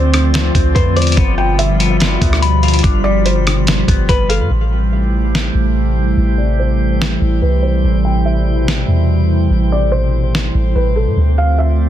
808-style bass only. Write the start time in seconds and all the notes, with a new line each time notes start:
Already playing: D2
0.55 D2
0.76 F2
0.96 E2
1.17 G1
2.21 D2
2.84 G1
3.88 G1
4.09 G1
4.40 G2
4.51 A1
5.55 A1
6.17 A1
7.21 A1
7.42 C2
7.63 B1
7.84 A1
8.88 E2
9.50 A1
10.55 A1
10.75 A1
11.07 A2
11.17 D2